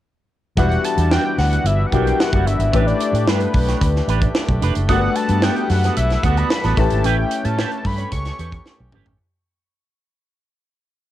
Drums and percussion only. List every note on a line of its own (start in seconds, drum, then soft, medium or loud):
0.57 kick loud
0.57 closed hi-hat medium
0.71 closed hi-hat soft
0.84 closed hi-hat medium
0.98 closed hi-hat medium
1.11 snare loud
1.38 snare soft
1.38 open hi-hat medium
1.52 closed hi-hat medium
1.65 closed hi-hat loud
1.92 kick medium
1.92 closed hi-hat medium
2.07 closed hi-hat soft
2.20 snare loud
2.33 kick medium
2.33 closed hi-hat soft
2.47 closed hi-hat medium
2.60 closed hi-hat medium
2.73 kick loud
2.73 closed hi-hat medium
2.88 closed hi-hat soft
3.00 closed hi-hat medium
3.15 closed hi-hat medium
3.28 snare loud
3.40 closed hi-hat soft
3.54 kick medium
3.54 open hi-hat medium
3.68 snare soft
3.68 closed hi-hat medium
3.81 kick medium
3.81 closed hi-hat medium
3.96 snare soft
4.08 closed hi-hat medium
4.22 kick medium
4.22 closed hi-hat soft
4.35 snare loud
4.48 kick medium
4.48 closed hi-hat soft
4.62 closed hi-hat medium
4.75 closed hi-hat medium
4.89 kick loud
4.89 closed hi-hat medium
5.15 closed hi-hat medium
5.28 closed hi-hat medium
5.42 snare loud
5.56 closed hi-hat soft
5.69 snare soft
5.69 open hi-hat medium
5.84 snare soft
5.84 closed hi-hat medium
5.97 closed hi-hat loud
6.10 snare soft
6.10 closed hi-hat soft
6.23 kick medium
6.23 closed hi-hat medium
6.37 closed hi-hat soft
6.50 snare loud
6.64 snare soft
6.64 closed hi-hat soft
6.77 kick loud
6.77 closed hi-hat medium
6.90 closed hi-hat medium
7.04 closed hi-hat medium
7.31 closed hi-hat medium
7.45 closed hi-hat medium
7.59 snare loud
7.72 closed hi-hat soft
7.85 kick medium
7.85 open hi-hat medium
7.98 closed hi-hat medium
8.12 kick medium
8.12 closed hi-hat loud
8.25 snare soft
8.25 closed hi-hat soft
8.39 closed hi-hat medium
8.52 kick medium
8.52 closed hi-hat soft
8.66 snare medium
8.92 mid tom medium
9.06 floor tom medium